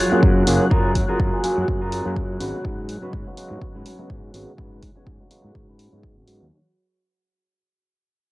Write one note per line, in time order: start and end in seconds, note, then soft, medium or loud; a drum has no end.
0.00 6.53 F#3 medium
0.00 0.17 F4 medium
0.00 0.17 G#4 medium
0.00 0.18 C#5 medium
0.00 6.53 F#6 medium
0.12 0.44 F#3 medium
0.12 0.44 A#3 medium
0.12 0.44 C#4 medium
0.12 0.45 F4 medium
0.12 0.45 G#4 medium
0.12 muted fingered electric bass stroke soft
0.23 0.42 F#2 medium
0.23 kick loud
0.47 0.57 F#1 medium
0.47 0.64 F#3 medium
0.47 0.64 A#3 medium
0.47 0.64 C#4 medium
0.47 0.64 F4 medium
0.47 0.64 G#4 loud
0.47 muted clean electric guitar stroke soft
0.47 open hi-hat loud
0.71 1.04 F#2 medium
0.71 0.90 F4 loud
0.71 0.90 G#4 loud
0.71 0.90 A#4 loud
0.71 kick loud
0.95 kick medium
0.95 open hi-hat loud
1.08 1.18 F#3 medium
1.08 1.18 A#3 medium
1.08 1.18 C#4 medium
1.08 1.38 F4 medium
1.08 1.18 F4 medium
1.08 1.38 G#4 medium
1.08 1.18 G#4 medium
1.08 1.39 A#4 medium
1.08 muted fingered electric bass stroke soft
1.20 1.30 F#2 medium
1.20 kick loud
1.33 1.42 F#3 medium
1.33 1.42 A#3 medium
1.33 1.42 C#4 medium
1.33 1.42 F4 medium
1.33 1.42 G#4 medium
1.44 1.65 F#3 medium
1.44 1.65 A#3 medium
1.44 1.65 C#4 medium
1.44 1.65 F4 medium
1.44 1.66 G#4 medium
1.44 muted fingered electric bass stroke soft
1.44 open hi-hat loud
1.58 1.66 F#2 medium
1.68 2.01 F#2 medium
1.68 1.79 F#3 medium
1.68 1.79 F4 medium
1.68 1.79 G#4 medium
1.68 muted clean electric guitar stroke medium
1.68 kick loud
1.81 2.11 F4 medium
1.81 2.11 G#4 medium
1.81 2.11 A#4 medium
1.92 open hi-hat medium
2.05 2.37 F#2 medium
2.05 2.38 F#3 medium
2.05 2.38 A#3 medium
2.05 2.38 C#4 medium
2.05 2.38 F4 medium
2.05 2.38 G#4 medium
2.16 kick loud
2.40 2.51 G#1 medium
2.40 2.57 C#3 medium
2.40 2.57 F#3 medium
2.40 2.57 G#3 medium
2.40 2.58 B3 medium
2.40 2.89 C#4 medium
2.40 2.89 F#4 medium
2.40 2.58 F#4 loud
2.40 2.89 B4 loud
2.40 open hi-hat loud
2.65 2.97 G#2 medium
2.65 kick loud
2.89 open hi-hat medium
3.02 3.11 C#3 medium
3.02 3.11 F#3 medium
3.02 3.11 G#3 medium
3.02 3.11 B3 medium
3.02 3.32 C#4 medium
3.02 3.32 F#4 medium
3.02 3.11 F#4 medium
3.02 3.32 B4 medium
3.02 muted fingered electric bass stroke soft
3.13 3.23 G#2 medium
3.13 kick loud
3.27 3.36 C#3 medium
3.27 3.36 F#3 medium
3.27 3.36 G#3 medium
3.27 3.36 B3 medium
3.27 3.36 F#4 medium
3.37 3.59 C#3 medium
3.37 3.59 F#3 medium
3.37 3.59 G#3 medium
3.37 3.59 B3 medium
3.37 3.59 F#4 medium
3.37 open hi-hat medium
3.51 3.59 G#2 medium
3.61 3.72 C#3 medium
3.61 3.73 B3 medium
3.61 muted clean electric guitar stroke medium
3.61 muted fingered electric bass stroke soft
3.61 kick loud
3.75 3.83 G#2 loud
3.75 4.04 C#4 medium
3.75 4.05 F#4 medium
3.75 4.05 B4 medium
3.86 open hi-hat medium
3.99 4.31 C#3 medium
3.99 4.31 F#3 medium
3.99 4.32 G#3 medium
3.99 4.32 B3 medium
3.99 4.32 F#4 medium
3.99 muted fingered electric bass stroke soft
4.10 4.29 G#2 medium
4.10 kick loud
4.34 4.44 G#1 medium
4.34 4.51 C#3 medium
4.34 4.51 F#3 medium
4.34 4.51 G#3 medium
4.34 4.51 B3 medium
4.34 4.51 F#4 loud
4.34 muted clean electric guitar stroke soft
4.34 open hi-hat medium
4.58 4.91 G#2 medium
4.58 4.77 C#4 loud
4.58 4.77 F#4 loud
4.58 4.77 B4 loud
4.58 kick loud
4.83 kick medium
4.83 open hi-hat loud
4.95 5.05 C#3 medium
4.95 5.05 F#3 medium
4.95 5.05 G#3 medium
4.95 5.05 B3 medium
4.95 5.25 C#4 medium
4.95 5.25 F#4 medium
4.95 5.05 F#4 medium
4.95 5.26 C#5 medium
4.95 muted fingered electric bass stroke soft
5.07 5.17 G#2 medium
5.07 kick loud
5.20 5.29 C#3 medium
5.20 5.29 F#3 medium
5.20 5.29 G#3 medium
5.20 5.29 B3 medium
5.20 5.29 F#4 medium
5.30 5.52 C#3 medium
5.30 5.52 F#3 medium
5.30 5.52 G#3 medium
5.30 5.52 B3 medium
5.30 5.53 F#4 medium
5.30 muted fingered electric bass stroke soft
5.30 open hi-hat loud
5.44 5.53 G#2 medium
5.54 5.88 G#2 medium
5.54 5.66 C#3 medium
5.54 5.66 F#3 medium
5.54 5.66 G#3 medium
5.54 5.66 B3 medium
5.54 muted clean electric guitar stroke medium
5.54 kick loud
5.68 5.98 C#4 medium
5.68 5.98 F#4 medium
5.68 5.98 B4 medium
5.79 open hi-hat medium
5.92 6.16 G#2 medium
5.92 6.25 C#3 medium
5.92 6.25 F#3 medium
5.92 6.25 G#3 medium
5.92 6.25 B3 medium
5.92 6.25 F#4 medium
6.03 kick loud
6.17 6.25 G#1 loud
6.27 6.38 G#2 medium
6.27 6.44 C#3 medium
6.27 6.44 F#3 medium
6.27 6.44 G#3 medium
6.27 6.44 B3 medium
6.27 6.44 F#4 loud
6.27 open hi-hat medium
6.41 6.49 D#2 medium